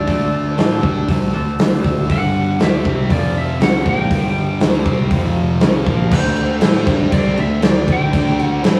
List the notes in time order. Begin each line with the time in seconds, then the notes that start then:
Already playing: D5
0.06 D2 D3 A3 D4 A4, kick, open hi-hat
0.32 A3 D4 A4
0.56 A2 D3 A3 D4 E4 A4, snare, open hi-hat
0.82 G2 G3 A3 D4 G4 A4, kick
1.07 C2 C3 D3 G3 A3 C4 D4 A4, kick, open hi-hat
1.33 D2 D3 A3 D4 A4
1.59 D2 D3 A3 D4 A4, snare, open hi-hat
1.83 D2 D3 A3 D4 A4, kick
2.08 G1 G2 D3 G3 F#5, kick, open hi-hat
2.59 D2 D3 A3 D4, snare, open hi-hat
2.63 E5
2.84 C2 C3 G3 C4, kick
3.10 F1 F2 C3 F3 D5, kick, open hi-hat
3.38 E5
3.60 C#2 C#3 G#3 C#4 F#5, snare, open hi-hat
3.86 A#1 A#2 F3 A#3 G5, kick
4.10 G1 G2 D3 G3, kick, open hi-hat
4.59 D2 D3 A3 D4, snare, open hi-hat
4.86 C2 C3 G3 C4, kick
5.11 F1 F2 C3 F3, kick, open hi-hat
5.60 C#2 C#3 G#3 C#4, snare, open hi-hat
5.86 A#1 A#2 F3 A#3, kick
6.11 D2 D3 A3 D4 C5, kick, crash
6.37 crash
6.61 A2 A3 E4 A4, snare, crash
6.85 G2 G3 D4 G4, kick, crash
7.11 C2 C3 G3 C4 D5, kick, crash
7.37 D2 D3 A3 E5, crash
7.61 D2 D3 A3 D5, snare, crash
7.87 D2 D3 A3 D4, kick, crash
7.92 G5
8.12 D2 D3 A3 D4, kick, crash
8.39 F#5, crash
8.62 A2 A3 E4 A4, snare, crash